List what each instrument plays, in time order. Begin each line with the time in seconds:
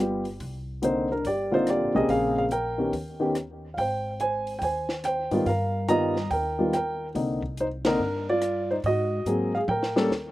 Already playing: upright bass G1
0.00 grand piano G3 B3 F4 G4
0.25 open hi-hat
0.40 upright bass C2, kick, open hi-hat
0.82 grand piano D3 A#3 C4 D#4 C5, closed hi-hat
1.12 grand piano D4 A#4
1.24 upright bass G1, grand piano G4 D5, kick, open hi-hat
1.51 grand piano D3 A#3 C4 D#4 F4 C5
1.67 grand piano G4 D5, cross-stick, closed hi-hat
1.81 upright bass A#1
1.95 upright bass B1, grand piano C#3 A#3 C4 G4 G#4 D#5
2.09 upright bass A#1, grand piano G#4 F5, kick, open hi-hat
2.38 grand piano G#4 F5
2.51 grand piano A#4 G5, closed hi-hat
2.78 grand piano D#3 B3 C#4 G4
2.93 upright bass D#2, kick, open hi-hat
3.20 grand piano D#3 B3 C#4 G4
3.35 cross-stick, closed hi-hat
3.74 upright bass G#1, grand piano F5, kick
3.78 grand piano C5 G5, open hi-hat
4.20 grand piano C5 G#5, closed hi-hat
4.47 open hi-hat
4.59 upright bass D#2, grand piano G5, kick, open hi-hat
4.63 grand piano C5 G#5
4.89 snare
5.04 grand piano C5 G5, cross-stick, closed hi-hat
5.31 upright bass G#2, grand piano D#3 G3 B3 F4, open hi-hat
5.46 upright bass G2, grand piano A#4 F5, kick, open hi-hat
5.88 grand piano D#3 G3 B3 F4 D#5 A#5, closed hi-hat
6.16 snare
6.31 upright bass D#2, grand piano A#4 G5, kick, open hi-hat
6.59 grand piano D#3 G3 B3 F4
6.73 grand piano A#4 G5, cross-stick, closed hi-hat
7.14 upright bass C2, grand piano D3 A#3 C4 D#4, kick, open hi-hat
7.42 kick
7.57 grand piano D#4 C5, closed hi-hat
7.85 grand piano D3 A#3 C4 D4 D#4 A#4, snare, ride
7.99 upright bass G2
8.29 grand piano F4 D5
8.42 cross-stick, closed hi-hat
8.71 grand piano D#4 C5
8.84 upright bass G#2, grand piano F#4 D#5, kick, open hi-hat
9.25 upright bass G#2, grand piano F#3 A#3 C4 G#4, closed hi-hat
9.55 grand piano G#4 F5
9.68 upright bass A2, grand piano A#4 G5, mid tom
9.83 snare
9.96 grand piano G3 A#3 C#4 A4, snare
10.09 upright bass D#2, snare